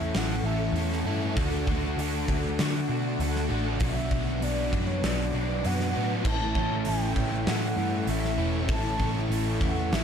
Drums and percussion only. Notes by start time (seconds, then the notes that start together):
0.14 snare, open hi-hat
0.76 open hi-hat
0.92 snare
1.37 kick, open hi-hat
1.67 kick
1.99 open hi-hat
2.28 kick
2.59 snare, open hi-hat
3.20 open hi-hat
3.36 snare
3.80 kick, open hi-hat
4.11 kick
4.42 open hi-hat
4.73 kick
5.04 snare, open hi-hat
5.64 open hi-hat
5.80 snare
6.25 kick, crash
6.55 kick
6.85 open hi-hat
7.16 kick
7.47 snare, open hi-hat
8.07 open hi-hat
8.25 snare
8.69 kick, open hi-hat
9.00 kick
9.32 open hi-hat
9.61 kick
9.92 snare, open hi-hat